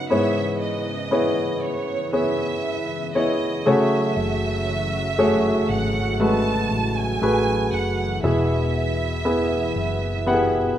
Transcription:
0.00 3.62 C#3 medium
0.00 0.10 B3 medium
0.00 3.62 B3 medium
0.00 0.12 D#4 soft
0.00 0.12 F#4 soft
0.00 0.11 C#5 medium
0.00 0.10 F#5 medium
0.10 1.59 G#2 soft
0.10 10.78 E3 medium
0.10 1.07 B3 medium
0.10 3.62 E4 medium
0.10 1.07 E4 soft
0.10 1.07 G#4 soft
0.10 1.07 C#5 medium
0.10 0.57 E5 medium
0.62 1.63 D#5 medium
1.11 2.08 B3 medium
1.11 2.08 E4 soft
1.11 2.08 G#4 medium
1.11 2.08 C#5 medium
1.64 2.14 C#5 medium
2.13 3.10 B3 medium
2.13 3.10 E4 soft
2.13 3.10 G#4 soft
2.13 3.10 C#5 medium
2.13 3.11 E5 medium
3.15 3.66 B3 soft
3.15 3.66 E4 medium
3.15 3.65 G#4 soft
3.15 3.65 C#5 medium
3.15 3.66 D#5 medium
3.65 8.19 C#3 medium
3.65 5.15 C#3 soft
3.65 8.19 F#3 medium
3.65 5.11 A3 medium
3.65 8.19 F#4 medium
3.65 5.11 F#4 medium
3.65 5.11 G#4 medium
3.65 5.11 C#5 medium
3.65 5.70 E5 medium
4.16 5.65 F#1 medium
5.18 6.15 A3 medium
5.18 6.15 F#4 medium
5.18 6.15 G#4 medium
5.18 6.15 C#5 medium
5.69 6.67 G#1 medium
5.69 6.21 F#5 medium
6.20 7.17 G#3 soft
6.20 7.16 A3 soft
6.20 7.17 F#4 soft
6.20 7.17 B4 medium
6.20 6.97 A5 medium
6.71 7.18 A1 medium
6.98 7.73 G#5 medium
7.22 7.69 A1 medium
7.22 8.18 A3 medium
7.22 8.18 F#4 medium
7.22 8.19 G#4 soft
7.22 8.19 B4 medium
7.72 8.20 F#1 medium
7.72 8.24 F#5 medium
8.23 9.72 E1 medium
8.23 10.78 B2 medium
8.23 9.72 B2 soft
8.23 9.20 B3 medium
8.23 10.78 B3 medium
8.23 10.25 E4 medium
8.23 9.20 E4 soft
8.23 9.20 G#4 soft
8.23 9.20 E5 medium
8.23 10.78 E5 medium
9.25 10.21 B3 medium
9.25 10.22 E4 medium
9.25 10.22 G#4 soft
9.25 10.22 E5 medium
9.76 10.73 F#1 medium
10.26 10.78 B3 medium
10.26 10.78 E4 medium
10.26 10.78 F#4 medium
10.26 10.33 G4 soft
10.26 10.78 F#5 medium
10.34 10.78 G#4 medium

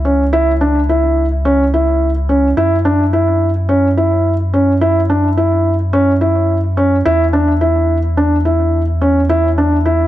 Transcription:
0.00 2.54 C#2 medium
0.05 0.23 C#4 medium
0.33 0.51 E4 loud
0.61 0.79 D4 medium
0.89 1.25 E4 medium
1.45 1.63 C#4 medium
1.74 2.09 E4 medium
2.29 2.47 C#4 medium
2.57 7.03 F#2 medium
2.57 2.75 E4 medium
2.85 3.03 D4 medium
3.13 3.49 E4 medium
3.69 3.87 C#4 medium
3.97 4.33 E4 medium
4.54 4.71 C#4 medium
4.81 4.99 E4 loud
5.10 5.27 D4 medium
5.37 5.73 E4 medium
5.93 6.11 C#4 medium
6.21 6.57 E4 medium
6.77 6.95 C#4 medium
7.05 10.07 E2 medium
7.05 7.23 E4 loud
7.33 7.51 D4 medium
7.61 7.97 E4 medium
8.17 8.35 D4 medium
8.45 8.81 E4 medium
9.01 9.19 C#4 medium
9.29 9.47 E4 medium
9.58 9.76 D4 medium
9.86 10.07 E4 medium

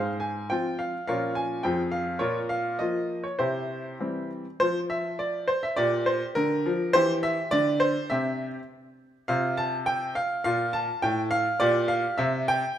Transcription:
0.00 0.49 G#2 medium
0.00 0.19 G#4 medium
0.00 0.19 C5 medium
0.20 0.50 G#5 medium
0.50 0.92 F3 soft
0.50 0.92 C4 soft
0.50 0.93 F4 medium
0.50 0.79 G5 medium
0.79 1.05 F5 medium
1.07 1.63 A#2 medium
1.07 1.61 F3 soft
1.07 1.61 C#4 soft
1.07 1.61 F4 soft
1.07 1.35 A#4 medium
1.07 1.35 C#5 medium
1.07 1.33 F5 medium
1.35 1.61 G#5 medium
1.63 2.19 F2 medium
1.63 2.17 F3 soft
1.63 2.17 C4 soft
1.63 2.18 G#4 soft
1.63 1.81 G5 medium
1.91 2.21 F5 medium
2.19 2.77 A#2 medium
2.19 2.48 F4 medium
2.19 2.48 A#4 medium
2.19 2.37 C#5 medium
2.49 2.79 F5 medium
2.79 3.23 F3 medium
2.79 3.23 A#3 medium
2.79 3.23 F4 medium
2.79 3.24 D#5 medium
3.23 3.39 C#5 medium
3.39 3.98 C3 medium
3.39 4.27 E4 medium
3.39 4.27 G4 medium
3.39 3.94 C5 medium
4.00 4.44 E3 soft
4.00 4.44 G3 soft
4.00 4.44 C4 soft
4.60 5.45 F3 medium
4.60 4.78 C5 loud
4.90 5.17 E5 medium
5.19 5.49 D5 medium
5.48 5.63 C5 medium
5.63 5.78 E5 medium
5.76 6.20 A#2 medium
5.76 6.90 G4 medium
5.76 6.06 D5 loud
6.06 6.24 C5 medium
6.35 6.64 D3 medium
6.35 6.94 A#4 loud
6.66 6.93 F3 medium
6.93 7.36 E3 loud
6.93 8.07 G4 medium
6.93 7.11 C5 loud
7.23 7.52 E5 loud
7.51 7.95 D3 medium
7.51 7.78 D5 loud
7.80 8.07 C5 loud
8.10 8.53 C3 medium
8.10 8.58 C4 medium
8.10 8.59 G4 medium
8.10 8.46 E5 loud
9.28 10.13 C3 medium
9.28 10.42 F4 soft
9.28 9.55 F5 loud
9.57 9.75 A5 loud
9.86 10.16 G5 loud
10.15 10.42 F5 loud
10.44 10.87 A#2 medium
10.44 10.99 F4 medium
10.44 10.74 F5 loud
10.73 11.00 A5 loud
11.02 11.45 A2 medium
11.02 11.20 G5 loud
11.31 11.60 F5 loud
11.60 12.03 A#2 loud
11.60 12.15 G4 medium
11.60 11.89 D5 loud
11.88 12.15 F5 loud
12.18 12.62 C3 loud
12.18 12.48 E5 loud
12.48 12.78 G5 loud

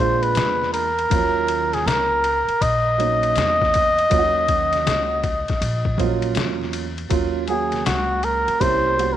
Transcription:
0.00 0.33 A#1 loud
0.00 0.83 G#3 medium
0.00 0.83 A#3 medium
0.00 0.83 D4 medium
0.00 0.84 F4 medium
0.00 0.24 C5 medium
0.00 ride medium
0.23 0.73 B4 loud
0.23 ride soft
0.35 1.08 E2 medium
0.35 snare loud
0.35 hi-hat pedal medium
0.35 ride medium
0.62 snare soft
0.74 1.75 A#4 loud
0.74 ride medium
0.99 ride soft
1.10 1.83 D#2 loud
1.10 1.19 F3 medium
1.10 2.22 A#3 medium
1.10 2.22 C#4 medium
1.10 2.22 F4 medium
1.10 kick loud
1.10 ride medium
1.16 2.24 F#3 medium
1.48 ride medium
1.73 1.88 G#4 medium
1.73 snare soft
1.73 ride soft
1.86 2.45 C#2 medium
1.86 2.64 A#4 loud
1.86 snare loud
1.86 hi-hat pedal medium
1.86 ride medium
2.24 ride medium
2.48 muted upright bass stroke soft
2.48 ride soft
2.61 3.33 A#1 medium
2.61 6.37 D#5 loud
2.61 kick loud
2.61 ride medium
2.98 3.83 F#3 medium
2.98 3.84 A#3 medium
2.98 3.84 C#4 medium
2.98 3.84 D#4 medium
2.98 ride medium
3.23 ride soft
3.36 4.08 E2 medium
3.36 snare loud
3.36 hi-hat pedal medium
3.36 ride medium
3.62 kick loud
3.62 snare soft
3.74 kick loud
3.74 ride medium
3.99 ride soft
4.10 4.83 D#2 loud
4.10 5.21 F#3 medium
4.10 5.22 A#3 medium
4.10 5.22 C#4 medium
4.10 4.20 F4 medium
4.10 kick loud
4.10 ride medium
4.19 5.26 F#4 loud
4.48 kick medium
4.48 ride medium
4.73 snare soft
4.73 ride soft
4.86 5.45 C#2 medium
4.86 snare loud
4.86 hi-hat pedal medium
4.86 ride medium
5.24 kick medium
5.24 ride medium
5.48 muted upright bass stroke soft
5.48 kick loud
5.48 snare soft
5.48 ride soft
5.61 6.33 A#1 loud
5.61 ride medium
5.85 kick medium
5.97 6.06 F3 medium
5.97 6.83 A#3 medium
5.97 6.84 C#4 medium
5.97 6.84 F4 medium
5.97 kick loud
5.97 ride medium
6.04 6.86 F#3 medium
6.22 ride soft
6.35 7.07 E2 medium
6.35 snare loud
6.35 hi-hat pedal medium
6.35 ride medium
6.62 snare soft
6.73 ride medium
6.98 ride soft
7.10 7.82 D#2 medium
7.10 7.41 F#3 medium
7.10 7.41 A#3 medium
7.10 7.42 C#4 medium
7.10 7.42 F4 loud
7.10 kick loud
7.10 ride medium
7.48 8.59 F#3 medium
7.48 8.59 A#3 medium
7.48 8.60 C#4 medium
7.48 8.60 F#4 medium
7.48 7.84 G#4 medium
7.48 ride medium
7.72 snare soft
7.72 ride soft
7.86 8.45 C#2 medium
7.86 8.26 F#4 medium
7.86 snare loud
7.86 hi-hat pedal medium
7.86 ride medium
8.23 8.62 A#4 medium
8.23 ride medium
8.48 muted upright bass stroke soft
8.48 ride soft
8.60 9.17 C2 medium
8.60 8.93 G3 medium
8.60 8.93 A#3 medium
8.60 8.94 C#4 medium
8.60 8.94 E4 medium
8.60 9.15 C5 loud
8.60 kick medium
8.60 ride medium
8.98 9.17 G3 medium
8.98 9.17 A#3 medium
8.98 9.17 C#4 medium
8.98 9.17 F#4 medium
8.98 ride medium
9.13 9.17 A#4 medium

